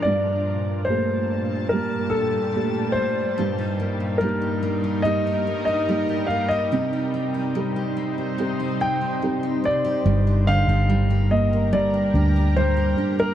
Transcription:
<<
  \new Staff \with { instrumentName = "Grand piano" } { \time 4/4 \key c \dorian \tempo 4 = 72 d''4 c''4 bes'8 a'4 c''8~ | c''4 bes'4 ees''8. ees''8. f''16 ees''16~ | ees''2~ ees''8 g''4 d''8~ | \key g \minor d''8 f''4 ees''8 d''4 c''8. bes'16 | }
  \new Staff \with { instrumentName = "Ambient pad" } { \time 4/4 \key c \dorian << { <g, bes, a''>1 | <g, ees' bes'>1 | <c ees' c''>1 | \key g \minor <g' bes''>1 | } \\ { g1~ | g1~ | g1 | bes'1 | } >> }
  \new Staff \with { instrumentName = "Steel-string acoustic guitar" } { \time 4/4 \key c \dorian r1 | <g, g'>16 ees'16 bes16 ees'16 g16 g'16 bes16 g'16 <g, g'>16 ees'16 bes16 ees'16 g16 g'16 bes16 g'16 | <c g'>16 ees'16 c'16 ees'16 g16 g'16 c'16 g'16 <c g'>16 ees'16 c'16 ees'16 g16 g'16 c'16 g'16 | \key g \minor g,16 d'16 g'16 d'16 g16 g'8 bes16 g,16 d'16 g'16 d'16 g16 g'16 d'16 bes16 | }
  \new Staff \with { instrumentName = "Upright piano" } { \time 4/4 \key c \dorian g,4 <a bes g'>4 <g bes g'>4 <a bes g'>4 | g,4 <bes ees' g'>4 <bes ees' g'>4 <bes ees' g'>4 | c4 <c' ees' g'>4 <c' ees' g'>4 <c' ees' g'>4 | \key g \minor g8 d8 g8 bes8 g8 d'8 g8 d'8 | }
  \new Staff \with { instrumentName = "Fingered electric bass" } { \clef bass \time 4/4 \key c \dorian r1 | r1 | r1 | \key g \minor g,,8. g,,4.~ g,,16 d,4 r8 | }
>>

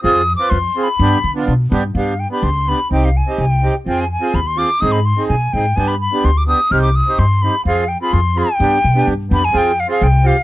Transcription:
<<
  \new Staff \with { instrumentName = "Flute" } { \time 2/4 \tempo 4 = 126 \tuplet 3/2 { ees'''4 d'''8 c'''4 b''8~ } | b''8 r4. | f''8 g''16 b''16 c'''8 b''8 | g''16 f''16 aes''8 g''8. r16 |
g''16 aes''16 aes''8 b''16 c'''16 d'''8 | ees'''16 b''16 c'''8 aes''8 g''8 | aes''16 b''16 b''8 c'''16 d'''16 ees'''8 | f'''16 d'''16 ees'''8 c'''8 b''8 |
f''8 g''16 b''16 c'''8 g''8~ | g''4. b''16 aes''16 | g''8 f''16 f''16 g''8 f''8 | }
  \new Staff \with { instrumentName = "Accordion" } { \time 2/4 <c' f' aes'>8 r16 <c' f' b'>16 r8 <c' f' aes'>16 r16 | <b d' g'>8 r16 <b d' f'>16 r8 <b d' g'>16 r16 | <b d' g'>8 r16 <b d' g'>16 r8 <b d' g'>16 r16 | <c' ees' g'>8 r16 <c' ees' g'>16 r8 <c' ees' g'>16 r16 |
<c' f' aes'>8 r16 <c' f' aes'>16 r8 <c' f' aes'>16 r16 | <c' ees' aes'>8 r16 <c' ees' aes'>16 r8 <c' ees' aes'>16 r16 | <b d' g'>8 r16 <b d' g'>16 r8 <b d' g'>16 r16 | <c' ees' g'>8 r16 <c' ees' g'>16 r8 <c' ees' g'>16 r16 |
<c' f' aes'>8 r16 <c' f' aes'>16 r8 <c' f' aes'>16 r16 | <b d' g'>8 r16 <b d' g'>16 r8 <b d' g'>16 r16 | <c' f' aes'>8 r16 <c' f' aes'>16 r8 <c' f' g'>16 r16 | }
  \new Staff \with { instrumentName = "Upright bass" } { \clef bass \time 2/4 f,4 f,8 r8 | g,8 d8 b,8 g,8 | g,4 cis,4 | c,4 c,4 |
f,4 ees,4 | aes,4 b,8 aes,8 | g,4 d,4 | c,4 g,4 |
f,4 f,4 | g,8 b,8 g,8 f,8 | f,4 c,4 | }
>>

